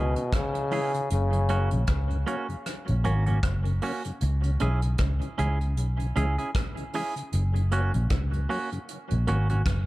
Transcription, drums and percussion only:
0.16 closed hi-hat
0.33 kick, cross-stick, closed hi-hat
0.55 closed hi-hat
0.71 open hi-hat
0.94 closed hi-hat
1.10 closed hi-hat
1.33 closed hi-hat
1.49 closed hi-hat
1.71 closed hi-hat
1.87 kick, cross-stick, closed hi-hat
2.10 closed hi-hat
2.27 closed hi-hat
2.49 closed hi-hat
2.66 cross-stick, closed hi-hat
2.87 closed hi-hat
3.04 closed hi-hat
3.26 closed hi-hat
3.43 kick, cross-stick, closed hi-hat
3.65 closed hi-hat
3.82 open hi-hat
4.04 closed hi-hat
4.21 closed hi-hat
4.43 closed hi-hat
4.60 closed hi-hat
4.82 closed hi-hat
4.98 kick, cross-stick, closed hi-hat
5.21 closed hi-hat
5.38 closed hi-hat
5.61 closed hi-hat
5.77 closed hi-hat
5.99 closed hi-hat
6.16 closed hi-hat
6.38 closed hi-hat
6.55 kick, cross-stick, closed hi-hat
6.77 closed hi-hat
6.93 open hi-hat
7.16 closed hi-hat
7.33 closed hi-hat
7.55 closed hi-hat
7.72 closed hi-hat
7.94 closed hi-hat
8.10 kick, cross-stick, closed hi-hat
8.33 closed hi-hat
8.50 open hi-hat
8.72 closed hi-hat
8.89 closed hi-hat
9.10 closed hi-hat
9.27 closed hi-hat
9.49 closed hi-hat
9.66 kick, cross-stick, closed hi-hat

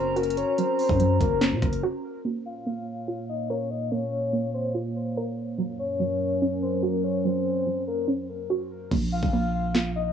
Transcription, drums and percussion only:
0.16 closed hi-hat
0.23 closed hi-hat
0.30 closed hi-hat
0.37 closed hi-hat
0.58 closed hi-hat
0.79 open hi-hat
0.89 kick
1.00 closed hi-hat
1.21 kick, closed hi-hat
1.41 snare, clap, closed hi-hat
1.62 kick, cross-stick, closed hi-hat
1.73 closed hi-hat
8.91 kick, crash
9.23 kick
9.75 snare, clap

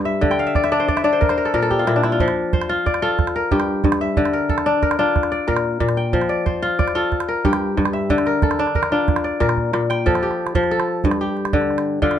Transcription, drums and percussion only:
0.23 calabash thump
0.31 calabash click
0.55 calabash thump, calabash click
0.64 calabash click
0.88 calabash thump
0.97 calabash click
1.22 calabash thump
1.29 calabash click
1.46 calabash click
1.54 calabash thump
1.71 calabash thump
1.87 calabash click
2.03 calabash click
2.20 calabash thump
2.28 calabash click
2.53 calabash thump
2.62 calabash click
2.86 calabash thump, calabash click
2.94 calabash click
3.19 calabash thump, calabash click
3.27 calabash click
3.51 calabash thump
3.60 calabash click
3.84 calabash thump, calabash click
3.92 calabash click
4.17 calabash thump
4.25 calabash click
4.49 calabash thump
4.58 calabash click
4.83 calabash thump, calabash click
4.91 calabash click
5.16 calabash thump, calabash click
5.23 calabash click
5.49 calabash thump
5.57 calabash click
5.80 calabash thump, calabash click
5.89 calabash click
6.13 calabash thump
6.21 calabash click
6.46 calabash thump
6.79 calabash thump, calabash click
6.88 calabash click
7.12 calabash thump, calabash click
7.20 calabash click
7.45 calabash thump
7.53 calabash click
7.78 calabash thump, calabash click
7.85 calabash click
8.10 calabash thump
8.18 calabash click
8.26 calabash click
8.42 calabash thump, calabash click
8.51 calabash click
8.59 calabash click
8.67 calabash click
8.75 calabash thump
8.83 calabash click
9.08 calabash thump, calabash click
9.16 calabash click
9.41 calabash thump, calabash click
9.49 calabash click
9.57 calabash thump
9.74 calabash click
9.91 calabash click
10.07 calabash thump
10.15 calabash click
10.23 calabash click
10.31 calabash click
10.47 calabash click
10.55 calabash thump
10.63 calabash click
10.80 calabash click
11.04 calabash thump
11.11 calabash click
11.37 calabash click
11.45 calabash click
11.53 calabash thump
11.61 calabash click
11.70 calabash click
11.78 calabash click
12.02 calabash thump
12.11 calabash click

